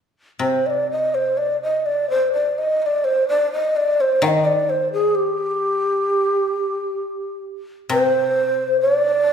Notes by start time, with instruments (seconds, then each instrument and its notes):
0.39 koto C3, shakuhachi C5
0.67 shakuhachi D5 D#5
0.91 shakuhachi D#5
1.15 shakuhachi C5
1.38 shakuhachi D5
1.63 shakuhachi D#5
1.86 shakuhachi D5
2.10 shakuhachi C5
2.33 shakuhachi D5
2.58 shakuhachi D#5
2.82 shakuhachi D5 D#5
3.05 shakuhachi C5
3.29 shakuhachi D5
3.53 shakuhachi D#5
3.76 shakuhachi D5
4.01 shakuhachi C5
4.22 koto D#3, shakuhachi G5
4.28 shakuhachi D#5
4.45 shakuhachi D5
4.70 shakuhachi C5
4.93 shakuhachi G#4
5.15 shakuhachi G4
7.89 koto C3, shakuhachi C5
8.81 shakuhachi D5